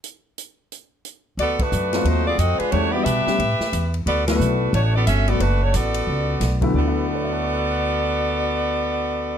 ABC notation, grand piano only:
X:1
M:4/4
L:1/8
Q:"Swing" 1/4=179
K:D
V:1 name="Grand piano"
z8 | z8 | z8 | z8 |
z8 | z2 [Aceac'e'a']6- | [Aceac'e'a']8 |]
V:2 name="Grand piano"
z8 | z3 [F,A,=C=F]3 z2 | [^G,=C_E=G] [=G,B,DF]2 [G,B,^CG] z4 | z [F,A,B,E]3 z3 [F,A,B,F] |
z6 z [D,,F,A,B,E] | [D,F,B,E]8- | [D,F,B,E]8 |]